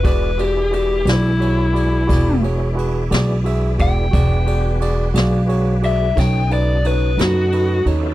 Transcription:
0.03 1.03 E1 loud
0.03 4.08 E3 medium
0.03 4.08 G#3 medium
0.03 4.08 B3 medium
0.03 4.08 D4 medium
0.03 0.29 F#4 medium
0.03 0.30 G#4 medium
0.03 0.39 B4 medium
0.03 0.30 D5 medium
0.03 kick loud
0.03 ride medium
0.38 0.64 F#4 medium
0.38 0.73 G4 medium
0.38 0.64 G#4 soft
0.38 0.65 D5 medium
0.38 ride medium
0.71 0.97 F#4 medium
0.71 1.07 G4 medium
0.71 0.98 G#4 medium
0.71 0.98 D5 medium
0.71 ride medium
1.05 2.04 B1 loud
1.05 1.32 F#4 medium
1.05 1.32 G#4 medium
1.05 1.33 D5 medium
1.05 snare loud
1.05 ride medium
1.10 2.40 E4 loud
1.40 1.66 F#4 medium
1.40 1.66 G#4 soft
1.40 1.66 C#5 medium
1.40 ride medium
1.73 2.00 F#4 medium
1.73 2.00 G#4 medium
1.73 2.00 D5 medium
1.73 ride medium
2.07 3.07 E1 medium
2.07 2.33 F#4 medium
2.07 2.34 G#4 medium
2.07 2.34 D5 medium
2.07 kick medium
2.07 ride medium
2.12 snare soft
2.42 2.68 F#4 medium
2.42 2.69 G#4 medium
2.42 2.69 C#5 medium
2.42 ride medium
2.75 3.02 F#4 medium
2.75 3.02 G#4 medium
2.75 3.02 B4 medium
2.75 ride medium
3.10 3.75 B1 loud
3.10 3.36 F#4 medium
3.10 3.37 G#4 medium
3.10 3.37 D5 medium
3.10 snare loud
3.10 ride medium
3.44 3.70 F#4 medium
3.44 3.70 G#4 medium
3.44 3.71 E5 medium
3.44 ride medium
3.78 4.11 E1 medium
3.78 4.04 F#4 medium
3.78 4.04 G#4 medium
3.78 4.05 D5 medium
3.78 5.15 G5 medium
3.78 kick medium
3.78 ride medium
4.11 5.11 E1 loud
4.11 6.15 F#3 medium
4.11 6.15 G#3 medium
4.11 6.15 B3 medium
4.11 6.15 D4 medium
4.11 4.38 F#4 medium
4.11 4.38 G#4 medium
4.11 4.39 D5 medium
4.11 kick loud
4.11 ride medium
4.46 4.72 F#4 medium
4.46 4.72 G#4 medium
4.46 4.73 D5 medium
4.46 ride medium
4.81 5.06 F#4 medium
4.81 5.07 G#4 medium
4.81 5.07 D5 medium
4.81 ride medium
5.14 6.12 B1 loud
5.14 5.40 F#4 medium
5.14 5.40 G#4 medium
5.14 5.41 D5 medium
5.14 5.80 F5 medium
5.14 snare loud
5.14 ride medium
5.48 5.74 F#4 medium
5.48 5.74 G#4 medium
5.48 5.74 C#5 medium
5.48 ride medium
5.82 6.08 F#4 medium
5.82 6.08 G#4 medium
5.82 6.09 D5 medium
5.82 6.17 E5 medium
5.82 ride medium
6.15 7.15 B1 loud
6.15 8.14 C#3 medium
6.15 8.14 F#3 medium
6.15 7.89 A3 medium
6.15 6.42 D#4 medium
6.15 8.14 D#4 medium
6.15 6.42 A4 soft
6.15 6.42 C#5 medium
6.15 kick medium
6.15 snare soft
6.15 ride medium
6.20 6.51 G5 medium
6.50 6.76 D#4 medium
6.50 6.76 A4 soft
6.50 6.77 B4 medium
6.50 6.85 D5 medium
6.50 ride medium
6.84 7.10 D#4 medium
6.84 7.10 A4 medium
6.84 7.18 B4 medium
6.84 7.11 C#5 medium
6.84 ride medium
7.17 7.82 F#2 medium
7.17 7.44 D#4 medium
7.17 7.85 F#4 loud
7.17 7.44 A4 soft
7.17 7.45 B4 medium
7.17 snare loud
7.17 ride medium
7.52 7.78 D#4 medium
7.52 7.78 A4 medium
7.52 7.79 B4 medium
7.52 ride medium
7.86 8.14 D#2 medium
7.86 8.11 D#4 medium
7.86 8.12 A4 medium
7.86 8.12 C#5 medium
7.86 ride medium
7.90 8.13 A3 medium
7.90 8.14 B3 medium
7.95 8.14 C4 medium
7.95 8.14 D4 medium
8.01 8.14 E4 medium
8.01 8.14 F4 medium
8.06 8.14 G4 medium
8.06 8.14 A4 medium

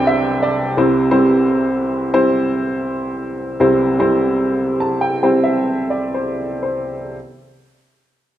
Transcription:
0.00 0.72 C2 medium
0.00 0.72 C3 medium
0.00 0.61 G3 medium
0.00 0.61 C4 medium
0.00 0.61 D4 medium
0.00 0.61 C5 medium
0.00 0.41 D5 medium
0.00 0.78 G5 medium
0.00 0.77 A5 medium
0.07 0.39 E5 medium
0.43 0.74 D5 medium
0.77 3.56 C2 medium
0.77 3.57 C3 medium
0.77 1.07 G3 medium
0.77 1.07 C4 medium
0.77 1.07 E4 medium
0.77 1.07 C5 medium
1.11 2.03 G3 medium
1.11 2.03 C4 medium
1.11 2.03 E4 medium
1.11 2.03 C5 medium
2.14 3.43 G3 medium
2.14 3.43 C4 medium
2.14 3.43 E4 medium
2.14 3.43 C5 medium
3.60 7.10 C2 medium
3.60 7.10 C3 medium
3.60 3.94 G3 medium
3.60 3.94 C4 medium
3.60 3.95 E4 medium
3.60 3.95 C5 medium
3.99 5.09 G3 medium
3.99 5.09 C4 medium
3.99 5.09 E4 medium
3.99 5.09 C5 medium
4.80 5.00 A5 medium
5.01 5.21 G5 medium
5.23 6.91 G3 medium
5.23 6.92 C4 medium
5.23 6.92 E4 medium
5.23 6.13 C5 medium
5.23 5.43 G5 soft
5.44 5.87 E5 medium
5.90 6.12 D5 soft
6.14 6.60 C5 soft
6.63 7.10 C5 soft

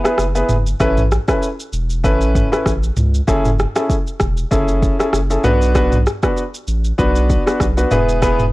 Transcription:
0.04 0.22 B3 medium
0.04 0.22 E4 medium
0.04 0.22 G#4 medium
0.04 0.22 B4 medium
0.04 cross-stick loud
0.04 shaker soft
0.18 0.43 F#1 medium
0.18 cross-stick medium
0.18 shaker medium
0.35 0.53 B3 medium
0.35 0.53 E4 medium
0.35 0.53 G#4 medium
0.35 0.53 B4 medium
0.35 shaker medium
0.49 0.74 F#1 loud
0.49 mid tom medium
0.49 shaker medium
0.67 shaker medium
0.80 1.19 A1 loud
0.80 1.00 C#4 medium
0.80 1.00 E4 medium
0.80 1.01 A4 medium
0.80 1.01 B4 loud
0.80 kick loud
0.80 cross-stick medium
0.80 shaker medium
0.97 mid tom medium
0.97 shaker soft
1.11 cross-stick medium
1.11 shaker soft
1.28 1.46 C#4 medium
1.28 1.46 E4 medium
1.28 1.46 A4 medium
1.28 1.46 B4 medium
1.28 kick medium
1.28 cross-stick loud
1.28 shaker medium
1.43 shaker medium
1.60 shaker medium
1.73 2.06 E1 loud
1.73 shaker medium
1.90 shaker soft
2.04 2.42 A1 loud
2.04 2.48 C#4 medium
2.04 2.48 E4 medium
2.04 2.48 A4 medium
2.04 2.48 B4 loud
2.04 kick loud
2.04 shaker medium
2.21 shaker soft
2.35 kick loud
2.35 mid tom medium
2.35 shaker medium
2.52 2.70 C#4 medium
2.52 2.70 E4 medium
2.52 2.70 A4 medium
2.52 2.70 B4 medium
2.52 cross-stick medium
2.52 shaker soft
2.66 2.91 A1 medium
2.66 kick medium
2.66 cross-stick medium
2.66 shaker medium
2.83 shaker medium
2.97 3.21 C#2 medium
2.97 mid tom loud
2.97 shaker medium
3.14 shaker medium
3.27 3.66 F#1 loud
3.27 3.48 C#4 medium
3.27 3.48 E4 medium
3.27 3.48 G#4 medium
3.27 3.48 A4 loud
3.27 kick loud
3.27 cross-stick medium
3.27 shaker medium
3.45 mid tom medium
3.45 shaker soft
3.59 cross-stick medium
3.59 shaker soft
3.75 3.93 C#4 medium
3.75 3.94 E4 medium
3.75 3.94 G#4 medium
3.75 3.94 A4 medium
3.75 cross-stick loud
3.75 shaker medium
3.90 kick loud
3.90 shaker medium
4.07 shaker soft
4.20 4.45 E1 medium
4.20 kick medium
4.20 cross-stick medium
4.20 shaker medium
4.37 shaker soft
4.51 4.90 F#1 loud
4.51 4.95 C#4 medium
4.51 4.95 E4 medium
4.51 4.95 G#4 medium
4.51 4.95 A4 medium
4.51 kick medium
4.51 shaker medium
4.68 shaker soft
4.83 kick loud
4.83 shaker medium
4.99 5.17 C#4 medium
4.99 5.17 E4 medium
4.99 5.17 G#4 medium
4.99 5.17 A4 medium
4.99 cross-stick medium
4.99 shaker soft
5.13 5.38 F#1 medium
5.13 cross-stick medium
5.13 shaker medium
5.30 5.48 C#4 medium
5.30 5.48 E4 medium
5.30 5.48 G#4 medium
5.30 5.48 A4 medium
5.30 shaker medium
5.44 6.07 B1 loud
5.44 5.73 B3 medium
5.44 5.73 D4 medium
5.44 5.73 F#4 medium
5.44 5.73 B4 loud
5.44 mid tom medium
5.44 shaker medium
5.62 shaker medium
5.75 5.95 B3 medium
5.75 5.95 D4 medium
5.75 5.95 F#4 medium
5.75 5.95 B4 loud
5.75 kick loud
5.75 cross-stick medium
5.75 shaker medium
5.92 mid tom medium
5.92 shaker soft
6.06 cross-stick medium
6.06 shaker soft
6.23 6.41 B3 medium
6.23 6.41 D4 medium
6.23 6.41 F#4 medium
6.23 6.41 B4 medium
6.23 kick loud
6.23 cross-stick loud
6.23 shaker medium
6.37 shaker medium
6.54 shaker soft
6.68 6.92 A1 medium
6.68 shaker medium
6.84 shaker soft
6.98 7.37 B1 loud
6.98 7.42 B3 medium
6.98 7.42 D4 medium
6.98 7.42 F#4 medium
6.98 7.42 B4 loud
6.98 kick loud
6.98 shaker medium
7.16 shaker soft
7.30 kick loud
7.30 shaker medium
7.46 7.64 B3 medium
7.46 7.65 D4 medium
7.46 7.65 F#4 medium
7.46 7.65 B4 medium
7.46 cross-stick medium
7.46 shaker medium
7.60 7.85 B1 medium
7.60 kick medium
7.60 cross-stick medium
7.60 shaker medium
7.77 7.89 B3 medium
7.77 7.95 D4 medium
7.77 7.96 F#4 medium
7.77 7.90 B4 medium
7.77 shaker medium
7.91 8.53 E1 loud
7.91 8.20 B3 medium
7.91 8.20 E4 medium
7.91 8.20 G#4 medium
7.91 8.20 B4 loud
7.91 mid tom medium
7.91 shaker medium
8.09 shaker medium
8.22 8.43 B3 loud
8.22 8.43 E4 medium
8.22 8.43 G#4 medium
8.22 8.43 B4 loud
8.22 kick loud
8.22 cross-stick medium
8.22 shaker medium
8.39 mid tom medium
8.39 shaker soft

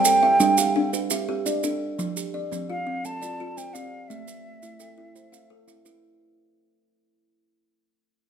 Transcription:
0.00 0.23 G3 medium
0.00 0.90 G5 medium
0.05 0.58 A4 medium
0.05 maracas medium
0.23 0.76 E5 medium
0.40 0.76 G3 medium
0.40 0.76 D4 medium
0.40 maracas medium
0.58 1.11 G4 medium
0.58 1.11 F5 medium
0.58 maracas medium
0.76 1.11 D4 medium
0.93 1.29 D4 medium
0.93 1.46 B4 medium
0.93 maracas medium
1.10 1.64 G4 medium
1.10 1.64 E5 medium
1.10 maracas medium
1.29 1.64 G4 medium
1.46 1.81 D4 medium
1.46 1.99 D5 medium
1.46 maracas medium
1.63 1.99 D4 medium
1.63 2.17 A4 medium
1.63 maracas medium
1.99 2.34 F3 medium
1.99 maracas medium
2.17 2.70 G4 medium
2.17 maracas medium
2.34 2.87 D5 medium
2.52 2.87 F3 medium
2.52 2.87 C4 medium
2.52 maracas medium
2.70 3.22 F4 medium
2.70 3.07 F5 medium
2.70 3.23 E6 medium
2.87 3.22 C4 medium
3.05 3.40 C4 medium
3.05 3.58 A4 medium
3.05 3.59 A5 loud
3.05 maracas medium
3.22 3.75 F4 medium
3.22 3.73 D5 medium
3.22 maracas medium
3.40 3.75 F4 medium
3.57 3.93 C4 medium
3.57 4.10 C5 medium
3.57 3.75 G5 medium
3.57 maracas medium
3.74 4.10 C4 medium
3.74 4.28 G4 medium
3.74 4.28 D5 medium
3.74 4.10 F5 medium
3.74 maracas medium
4.08 4.45 A3 medium
4.08 5.50 E5 medium
4.08 maracas medium
4.28 4.81 B4 medium
4.28 maracas medium
4.63 4.98 A3 medium
4.63 4.98 E4 medium
4.63 maracas medium
4.80 5.33 A4 medium
4.80 5.33 G5 medium
4.80 maracas medium
4.98 5.33 E4 medium
5.15 5.51 E4 medium
5.15 5.68 C5 medium
5.15 maracas medium
5.32 5.86 A4 medium
5.32 5.85 F5 medium
5.32 maracas medium
5.50 5.86 A4 medium
5.68 6.03 E4 medium
5.68 6.21 E5 medium
5.68 maracas medium
5.85 6.21 E4 medium
5.85 6.38 B4 medium
5.85 maracas medium

